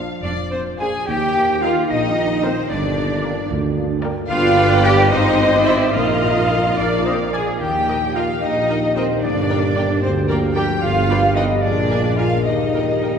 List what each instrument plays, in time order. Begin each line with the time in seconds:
Already playing: harp A#2 A#3 D4 F4, viola section F3 A#3, french horn section F3 D4, violin section D4 F4 F5
0.23 double bass section F1, cello section F2 D4, clarinet D5, violin section D5, flute D5
0.51 cello section C4, clarinet C5, flute C5, violin section C5
0.80 viola section F3 A#3, violin section D4 F4 G#5, cello section G#4, clarinet G#5, flute G#5
1.07 tuba D#2, double bass section D#2, harp D#3, cello section G4, clarinet G5, violin section G5, flute G5
1.36 french horn section A#3 D#4, harp D#4
1.62 french horn section A#3 D#4, cello section F4, harp G4, viola section A#4 D#5, clarinet F5, violin section F5 G5, flute F5
1.90 tuba A#1, double bass section A#1, cello section D#4, harp D#4, clarinet D#5, violin section D#5, flute D#5
2.16 french horn section A#3 D#4, harp D4
2.43 french horn section A#3 D#4, cello section C4, harp D#4, viola section A#4 D#5, clarinet C5, flute C5, violin section C5 G5
2.69 tuba G1, double bass section G1, harp G2, cello section D4, clarinet D5, flute D5, violin section D5
2.97 french horn section A#3 D4, harp A#3
3.23 french horn section A#3 D4, harp D4, viola section A#4 D5, violin section G5
3.50 double bass section D2, tuba D2, harp A#3
3.77 harp G#3, french horn section A#3 D4
4.03 harp A#3, french horn section A#3 D4, viola section A#4 D5, violin section G5
4.29 tuba G1, double bass section G1, harp G2, french horn section B3 D4, cello section F4, viola section B4 D5, flute F5, violin section F5 G5, clarinet F5
4.56 harp B3
4.83 cello section G4, flute G5, clarinet G5, violin section G5
5.11 tuba G#1, double bass section G#1, french horn section C4 D#4, cello section D#4, viola section C5, violin section D#5, flute D#5, clarinet D#5
5.38 harp G#3
5.53 viola section D5
5.65 harp C4 C5, cello section E4, violin section E5, flute E5, clarinet E5
5.93 double bass section A#1, tuba A#1, harp A#2, french horn section A#3 D#4, cello section F4, viola section A#4 D#5, violin section D#5 F5, clarinet F5, flute F5
6.22 harp F3
6.50 harp D#4 A#4
6.77 double bass section A#1, tuba A#1, harp A#2, french horn section A#3 F4, cello section D4, viola section A#4 D5, violin section D5 F5, flute D5, clarinet D5, oboe F5
7.05 harp F3, cello section C4, flute C5, violin section C5, clarinet C5, oboe D#5
7.33 harp F4 A#4, cello section G#4, oboe D5, clarinet G#5, violin section G#5, flute G#5
7.60 tuba D#2, double bass section D#2, harp D#3, french horn section A#3 G4, cello section G4, clarinet G5, violin section G5, flute G5
7.88 harp D#4, viola section A#4 D#5, violin section G5
8.15 cello section F4, harp A#4, viola section A#4 D#5, clarinet F5, flute F5, violin section F5 G5
8.42 tuba A#1, double bass section A#1, harp D#4, cello section D#4, flute D#5, clarinet D#5, violin section D#5
8.69 harp D4, viola section A#4 D#5, violin section G5
8.96 cello section C4, harp D#4, viola section A#4 D#5, clarinet C5, flute C5, violin section C5 G5
9.22 tuba G1, double bass section G1, harp G2, cello section D4, violin section D5, clarinet D5, flute D5
9.49 harp G3, viola section A#4 D5, violin section G5
9.76 viola section A#4 D5, violin section G5
10.02 double bass section D2, tuba D2, harp G3, cello section C4, clarinet C5, violin section C5, flute C5
10.29 harp F3, cello section A#3, violin section A#4 G5, clarinet A#4, flute A#4, viola section A#4 D5
10.55 harp G3, cello section G4, viola section A#4 D5, clarinet G5, violin section G5, flute G5
10.81 double bass section G1, tuba G1, harp G2, french horn section B3 G4, cello section F4, clarinet F5, violin section F5, flute F5
11.09 harp G3, viola section B4 D5, violin section G5
11.35 harp D4 B4, cello section D#4, viola section B4 D5, clarinet D#5, flute D#5, violin section D#5 G5
11.61 double bass section A#1, tuba A#1, harp A#2, french horn section A#3 G#4, cello section D4, clarinet D5, flute D5, violin section D5
11.90 harp G#3, viola section A#4, violin section G#5
12.17 harp A#3, cello section F4, viola section A#4, flute F5, clarinet F5, violin section F5 G#5
12.45 tuba D#2, double bass section D#2, harp D#3, cello section D#4, french horn section G4, clarinet D#5, flute D#5, violin section D#5
12.74 harp A#3, viola section A#4, violin section G5
13.02 viola section A#4, violin section G5